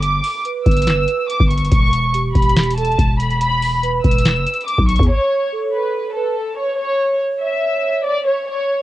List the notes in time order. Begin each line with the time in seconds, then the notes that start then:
Already playing: G1
0.03 D6, closed hi-hat
0.24 open hi-hat
0.45 B4, closed hi-hat
0.66 G1 E6, kick, closed hi-hat
0.71 closed hi-hat
0.77 closed hi-hat
0.82 closed hi-hat
0.87 snare, clap, closed hi-hat
1.08 closed hi-hat
1.29 D6, closed hi-hat
1.40 G1, kick
1.51 C#6, closed hi-hat
1.58 closed hi-hat
1.65 closed hi-hat
1.72 E1 C#6, kick, closed hi-hat
1.93 closed hi-hat
2.14 G4, closed hi-hat
2.35 E1 B5, kick, closed hi-hat
2.42 closed hi-hat
2.49 closed hi-hat
2.56 snare, clap, closed hi-hat
2.63 closed hi-hat
2.70 closed hi-hat
2.78 A4 A5, closed hi-hat
2.85 closed hi-hat
2.92 closed hi-hat
2.99 E1, kick, closed hi-hat
3.20 B5, closed hi-hat
3.30 closed hi-hat
3.41 B5, closed hi-hat
3.62 open hi-hat
3.83 B4, closed hi-hat
4.04 E1 E6, kick, closed hi-hat
4.11 closed hi-hat
4.18 closed hi-hat
4.25 snare, clap, closed hi-hat
4.36 F#1
4.46 closed hi-hat
4.54 closed hi-hat
4.61 closed hi-hat
4.67 D6, closed hi-hat
4.78 B1, kick
4.89 C#6, closed hi-hat
4.96 E2, kick, closed hi-hat
5.03 closed hi-hat
5.10 C#5
5.52 A4
5.74 B4
6.16 A4 B4
6.58 C#5
6.79 C#5
7.21 C#5
7.42 E5
8.05 D5
8.27 C#5
8.48 C#5